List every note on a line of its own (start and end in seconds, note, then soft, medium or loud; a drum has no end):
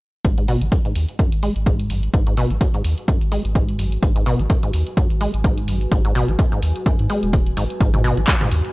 0.24 0.57 G#1 loud
0.24 0.36 G#2 medium
0.24 8.73 F#4 medium
0.24 kick loud
0.24 closed hi-hat medium
0.38 0.46 G#2 medium
0.38 closed hi-hat soft
0.48 0.63 B2 loud
0.48 open hi-hat loud
0.61 0.69 G#1 medium
0.61 0.65 G#3 loud
0.61 closed hi-hat soft
0.72 0.79 F#2 medium
0.72 kick loud
0.72 closed hi-hat medium
0.85 0.94 G#2 medium
0.85 closed hi-hat soft
0.95 1.06 D#2 medium
0.95 open hi-hat loud
1.04 8.73 B4 medium
1.04 8.73 G#5 medium
1.09 closed hi-hat soft
1.19 1.30 F#2 medium
1.19 kick loud
1.19 closed hi-hat medium
1.32 1.50 G#1 medium
1.32 closed hi-hat soft
1.43 1.54 G#3 medium
1.43 open hi-hat loud
1.56 1.86 G#1 medium
1.56 closed hi-hat soft
1.66 1.91 G#2 medium
1.66 kick loud
1.66 closed hi-hat medium
1.79 closed hi-hat soft
1.90 2.09 G#1 loud
1.90 2.01 F#2 loud
1.90 open hi-hat loud
2.03 closed hi-hat soft
2.14 2.46 G#1 loud
2.14 2.24 G#2 medium
2.14 kick loud
2.14 closed hi-hat medium
2.27 2.35 G#2 medium
2.27 closed hi-hat soft
2.37 2.52 B2 loud
2.37 open hi-hat loud
2.50 2.58 G#1 medium
2.50 2.54 G#3 medium
2.50 closed hi-hat soft
2.61 2.68 F#2 medium
2.61 kick loud
2.61 closed hi-hat medium
2.74 2.83 G#2 medium
2.74 closed hi-hat soft
2.84 2.95 D#2 medium
2.84 open hi-hat loud
2.98 closed hi-hat soft
3.08 3.19 F#2 medium
3.08 kick loud
3.08 closed hi-hat medium
3.21 3.39 G#1 medium
3.21 closed hi-hat soft
3.32 3.43 G#3 medium
3.32 open hi-hat loud
3.45 3.75 G#1 medium
3.45 closed hi-hat soft
3.55 3.80 G#2 medium
3.55 kick loud
3.55 closed hi-hat medium
3.69 closed hi-hat soft
3.79 3.98 G#1 loud
3.79 3.90 F#2 loud
3.79 open hi-hat loud
3.92 closed hi-hat soft
4.03 4.34 G#1 medium
4.03 4.13 G#2 medium
4.03 kick loud
4.03 closed hi-hat medium
4.16 4.24 G#2 medium
4.16 closed hi-hat soft
4.26 4.41 B2 loud
4.26 open hi-hat loud
4.39 4.47 G#1 medium
4.39 4.43 G#3 medium
4.39 closed hi-hat soft
4.50 4.57 F#2 medium
4.50 kick loud
4.50 closed hi-hat medium
4.63 4.72 G#2 medium
4.63 closed hi-hat soft
4.73 4.84 D#2 medium
4.73 open hi-hat loud
4.87 closed hi-hat soft
4.97 5.08 F#2 medium
4.97 kick loud
4.97 closed hi-hat medium
5.10 5.28 G#1 medium
5.10 closed hi-hat soft
5.21 5.32 G#3 medium
5.21 open hi-hat loud
5.34 5.64 G#1 medium
5.34 closed hi-hat soft
5.44 5.69 G#2 medium
5.44 kick loud
5.44 closed hi-hat medium
5.58 closed hi-hat soft
5.68 5.87 G#1 loud
5.68 5.79 F#2 loud
5.68 open hi-hat loud
5.81 closed hi-hat soft
5.92 6.24 G#1 loud
5.92 6.02 G#2 medium
5.92 kick loud
5.92 closed hi-hat medium
6.05 6.13 G#2 medium
6.05 closed hi-hat soft
6.15 6.30 B2 medium
6.15 open hi-hat loud
6.28 6.36 G#1 medium
6.28 6.32 G#3 loud
6.28 closed hi-hat soft
6.39 6.46 F#2 medium
6.39 kick loud
6.39 closed hi-hat medium
6.52 6.61 G#2 medium
6.52 closed hi-hat soft
6.62 6.73 D#2 medium
6.62 open hi-hat loud
6.76 closed hi-hat soft
6.86 6.97 F#2 medium
6.86 kick loud
6.86 closed hi-hat medium
6.99 7.07 G#2 medium
6.99 closed hi-hat soft
7.10 7.35 G#3 medium
7.10 open hi-hat loud
7.23 7.53 D#1 medium
7.23 closed hi-hat soft
7.33 7.41 F#2 medium
7.33 kick loud
7.33 closed hi-hat medium
7.47 closed hi-hat soft
7.57 7.67 G#1 medium
7.57 7.64 G#2 medium
7.57 open hi-hat loud
7.70 closed hi-hat soft
7.81 8.12 G#1 loud
7.81 7.91 G#2 medium
7.81 kick loud
7.81 closed hi-hat medium
7.94 8.02 G#2 medium
7.94 closed hi-hat soft
7.94 mid tom medium
8.04 8.19 B2 loud
8.04 open hi-hat medium
8.17 8.25 G#1 medium
8.17 8.21 G#3 loud
8.17 closed hi-hat soft
8.27 8.35 F#2 medium
8.27 kick loud
8.27 clap loud
8.27 closed hi-hat medium
8.41 8.50 G#2 medium
8.41 closed hi-hat soft
8.41 mid tom medium
8.51 8.62 D#2 medium
8.51 open hi-hat loud
8.65 closed hi-hat soft